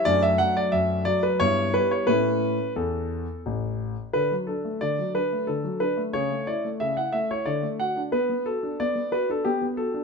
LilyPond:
<<
  \new Staff \with { instrumentName = "Grand piano" } { \time 3/4 \key d \major \tempo 4 = 90 << { d''16 e''16 fis''16 d''16 e''8 d''16 b'16 cis''8 b'16 cis''16 | b'4 a'4 r4 | b'8 a'8 d''8 b'8 a'8 b'8 | cis''8 d''8 e''16 fis''16 e''16 cis''16 d''8 fis''8 |
b'8 a'8 d''8 b'16 a'16 g'8 a'8 | } \\ { <a d'>2 <b e'>4 | r2. | r2. | r2. |
r2. | } >> }
  \new Staff \with { instrumentName = "Grand piano" } { \time 3/4 \key d \major fis,8 fis8 fis,8 fis8 g,8 g8 | <a, cis' e'>4 e,4 a,,4 | d16 fis16 d'16 a16 d16 fis16 d'16 a16 d16 fis16 d'16 a16 | cis16 a16 e'16 a16 cis16 e'16 a16 e'16 d16 a16 fis'16 d'16 |
b16 b16 fis'16 d'16 b16 b16 fis'16 d'16 b16 b16 fis'16 d'16 | }
>>